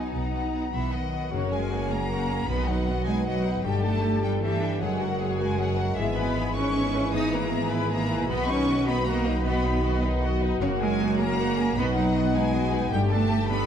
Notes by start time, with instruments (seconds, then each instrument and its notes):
Already playing: harp B2 F#3 F#4 G#4 B4, viola section B3, cello section D#4, clarinet D#4, violin section F#5 G#5
0.12 double bass section B1, viola section B3, harp B3, violin section F#5 A#5
0.31 harp F#3, viola section B3, violin section F#5
0.51 viola section B3, harp B4, violin section F#5
0.72 double bass section B1, cello section E3, harp F#3, viola section B3, violin section E5 F#5 B5
0.92 cello section D#3, viola section B3, harp B4, violin section D#5 F#5
1.11 viola section B3, harp F#4, violin section F#5
1.30 double bass section F#1, harp F#2, trombone section C#3 C#4, cello section C#3, viola section A#3 F#4, french horn section F#4 G#4, violin section A#4 C#5 F#5
1.51 harp F#3, cello section G#3, viola section C#4 A#4, violin section G#4 G#5
1.71 viola section A#3 F#4, harp G#4, violin section A#4 F#5
1.89 harp F#3, cello section A#3, viola section C#4 A#4, violin section G#4 G#5 A#5
2.10 viola section A#3 F#4, harp G#4, violin section A#4 F#5
2.29 viola section C#4 A#4, harp F#4, violin section G#4 G#5
2.48 double bass section B1, harp B2, trombone section D#3 B3, cello section B3, viola section B3 F#4, french horn section B4, violin section D#5 F#5 B5
2.67 harp F#3, cello section F#3, viola section D#4, violin section B4 D#5 F#5
2.86 viola section B3 F#4, harp B4, violin section D#5 F#5
3.05 harp F#3, cello section G#3, viola section D#4, violin section B4 D#5 G#5
3.25 cello section F#3, viola section B3 F#4, harp B4, violin section D#5 F#5
3.45 viola section D#4, harp D#4, violin section B4 D#5
3.64 double bass section G1, harp G2, trombone section D3 G3, cello section G3, viola section A3 G4, french horn section G4 A4, violin section G5 A5
3.68 violin section G4
3.83 harp G3, cello section A3, viola section D4 A4, violin section G5 A5
3.87 violin section A4
4.03 viola section A3 G4, violin section G4 A5, harp A4
4.23 harp G3, cello section G3, viola section D4 A4, violin section A4 G5
4.42 cello section E3, viola section A3 G4, violin section G4 E5 A5, harp A4
4.60 viola section D4 A4, harp D4, violin section A4 G5
4.80 double bass section F#1, harp F#2, trombone section C#3 G#3, cello section F#3, french horn section F#4 A#4, viola section G#4, violin section C#5 F#5 G#5
4.99 harp G#3, viola section F#4, violin section A#4 F#5
5.19 viola section G#4, harp A#4, violin section C#5 G#5
5.37 cello section G#3, harp G#3, viola section F#4, violin section A#4 F#5 G#5
5.57 cello section F#3, viola section G#4, harp A#4, violin section C#5 F#5 G#5
5.78 viola section F#4, harp F#4, violin section A#4 F#5
5.96 double bass section G#1, harp G#2, cello section E3, trombone section E3, viola section B3 G#4, french horn section E4 G#4, violin section G#4 E5
6.15 cello section B3, viola section E4 B4, violin section B4 G#5 B5
6.36 viola section B3 G#4, violin section G#4 E5, harp G#4
6.55 cello section C#4, viola section E4 B4, violin section B4 G#5 C#6
6.74 viola section B3 G#4, violin section G#4 E5, harp G#4
6.94 harp E4, viola section E4 B4, violin section B4 G#5
7.13 harp G#2, viola section B3 G#4, cello section D#4, violin section G#4 E5 D#6
7.31 cello section A#3, viola section E4 B4, violin section B4 G#5 A#5
7.49 viola section B3 G#4, harp G#4, violin section G#4 E5
7.69 cello section B3, viola section E4 B4, violin section B4 G#5 B5
7.90 cello section A#3, viola section B3 G#4, violin section G#4 E5 A#5, harp G#4
8.08 viola section E4 B4, harp E4, violin section B4 G#5
8.27 double bass section B1, harp B2, trombone section B2 D#3, viola section B3 F#4, cello section B3, french horn section F#4, violin section D#5 F#5 B5
8.47 cello section C#4, viola section D#4, violin section B4 D#5 C#6
8.67 viola section B3 F#4, harp F#4, violin section D#5 F#5
8.87 cello section B3, viola section D#4, violin section B4 D#5 B5
9.06 cello section A#3, viola section B3 F#4, harp F#4, violin section D#5 F#5 A#5
9.26 viola section D#4, harp D#4, violin section B4 D#5
9.44 harp F#3, viola section B3 F#4, cello section B3, violin section D#5 F#5 B5
9.64 harp B3, viola section D#4, violin section B4 D#5
9.83 viola section B3 F#4, harp F#4, violin section D#5 F#5
10.03 harp B3, viola section D#4, violin section B4 D#5
10.22 viola section B3 F#4, harp F#4, violin section D#5 F#5
10.40 harp D#4, viola section D#4, violin section B4 D#5
10.61 double bass section F#1, harp F#2, cello section C#3, trombone section C#3 G#3, viola section A#3 F#4, violin section A#4 C#5 F#5
10.80 harp G#3, cello section G#3, viola section C#4 A#4, violin section G#4 G#5
11.00 viola section A#3 F#4, harp F#4, violin section A#4 F#5
11.19 harp G#3, cello section A#3, viola section C#4 A#4, violin section G#4 G#5 A#5
11.38 viola section A#3 F#4, harp F#4, violin section A#4 F#5
11.58 harp C#4, viola section C#4 A#4, violin section G#4 G#5
11.76 double bass section B1, harp B2, trombone section B2 B3, cello section B3, viola section B3 F#4, french horn section D#4, violin section D#5 B5
11.95 cello section F#3, harp B3, viola section D#4, violin section B4 F#5
12.13 viola section B3 F#4, harp F#4, violin section D#5
12.34 cello section G#3, harp B3, viola section D#4, violin section B4 F#5 G#5
12.53 viola section B3 F#4, harp F#4, violin section D#5
12.71 harp D#4, viola section D#4, violin section B4 F#5
12.90 double bass section G1, trombone section G2 A3, harp G2, cello section G3, viola section A3 G4, french horn section D4 G4, violin section G4 G5
13.10 cello section A3, harp A3, viola section D4 A4, violin section A4 A5
13.29 viola section A3 G4, violin section G4 G5, harp G4
13.49 harp A3, cello section B3, viola section D4 A4, violin section A4 A5 B5